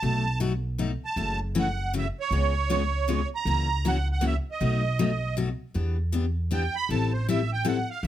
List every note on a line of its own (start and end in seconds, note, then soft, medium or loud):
0.00 0.94 B1 medium
0.00 0.23 B2 medium
0.00 0.24 F#3 medium
0.00 0.23 A3 medium
0.00 0.24 D#4 medium
0.00 0.24 F#4 medium
0.00 0.39 A5 loud
0.40 0.51 B2 medium
0.40 0.52 F#3 medium
0.40 0.52 A3 medium
0.40 0.52 D#4 medium
0.40 0.52 F#4 loud
0.78 0.90 B2 medium
0.78 0.90 F#3 medium
0.78 0.90 A3 medium
0.78 0.90 D#4 medium
0.78 0.90 F#4 medium
1.05 1.39 A5 medium
1.16 2.08 F#1 medium
1.16 1.38 C#3 medium
1.16 1.38 E3 medium
1.16 1.38 A3 medium
1.16 1.39 C#4 medium
1.16 1.39 F#4 medium
1.55 1.66 C#3 medium
1.55 1.66 E3 loud
1.55 1.66 A3 medium
1.55 1.67 C#4 loud
1.55 1.66 F#4 loud
1.55 1.93 F#5 medium
1.93 2.05 C#3 medium
1.93 2.05 E3 medium
1.93 2.05 A3 medium
1.93 2.05 C#4 medium
1.93 2.05 F#4 loud
1.98 2.08 E5 medium
2.20 3.29 C#5 medium
2.31 3.23 C#2 medium
2.31 2.52 C#3 medium
2.31 2.53 G#3 medium
2.31 2.53 B3 medium
2.31 2.53 F4 medium
2.31 2.53 G#4 medium
2.70 2.81 C#3 medium
2.70 2.81 G#3 medium
2.70 2.81 B3 medium
2.70 2.81 F4 loud
2.70 2.82 G#4 medium
3.08 3.19 C#3 medium
3.08 3.19 G#3 medium
3.08 3.19 B3 medium
3.08 3.20 F4 medium
3.08 3.20 G#4 medium
3.35 3.88 A#5 loud
3.45 4.37 C#2 medium
3.45 3.67 C#3 medium
3.45 3.67 E3 medium
3.45 3.68 A#3 medium
3.45 3.68 C#4 medium
3.45 3.68 F#4 medium
3.85 3.96 C#3 medium
3.85 3.96 E3 medium
3.85 3.96 A#3 medium
3.85 3.96 C#4 loud
3.85 3.96 F#4 medium
3.85 4.08 F#5 medium
4.12 4.25 F#5 medium
4.21 4.33 C#3 medium
4.21 4.33 E3 medium
4.21 4.33 A#3 medium
4.21 4.34 C#4 medium
4.21 4.33 F#4 medium
4.27 4.36 E5 medium
4.52 5.36 D#5 medium
4.60 5.52 B1 medium
4.60 4.81 B2 medium
4.60 4.82 F#3 medium
4.60 4.82 A3 medium
4.60 4.82 D#4 medium
4.60 4.82 F#4 medium
4.99 5.10 B2 medium
4.99 5.10 F#3 medium
4.99 5.10 A3 medium
4.99 5.10 D#4 medium
4.99 5.10 F#4 medium
5.37 5.48 B2 medium
5.37 5.48 F#3 medium
5.37 5.48 A3 medium
5.37 5.48 D#4 medium
5.37 5.48 F#4 medium
5.74 6.67 E2 medium
5.74 5.96 E3 medium
5.74 5.96 B3 medium
5.74 5.96 D4 medium
5.74 5.96 G4 medium
6.12 6.24 E3 medium
6.12 6.24 B3 medium
6.12 6.25 D4 medium
6.12 6.25 G4 medium
6.51 6.62 E3 medium
6.51 6.62 B3 medium
6.51 6.63 D4 medium
6.51 6.62 G4 medium
6.51 6.75 G5 medium
6.76 6.90 B5 loud
6.89 7.81 A1 medium
6.89 7.11 E3 medium
6.89 7.11 G3 medium
6.89 7.11 C4 medium
6.89 7.11 E4 medium
6.89 7.11 A4 medium
6.89 7.13 A5 medium
7.13 7.27 C5 medium
7.29 7.39 E3 medium
7.29 7.39 G3 medium
7.29 7.39 C4 medium
7.29 7.39 E4 medium
7.29 7.40 A4 loud
7.29 7.51 E5 medium
7.53 7.66 G5 loud
7.65 7.76 E3 medium
7.65 7.76 G3 medium
7.65 7.76 C4 medium
7.65 7.77 E4 loud
7.65 7.77 A4 medium
7.65 7.89 F#5 medium
7.90 8.04 F5 medium
8.03 8.07 A#1 medium
8.03 8.07 E3 medium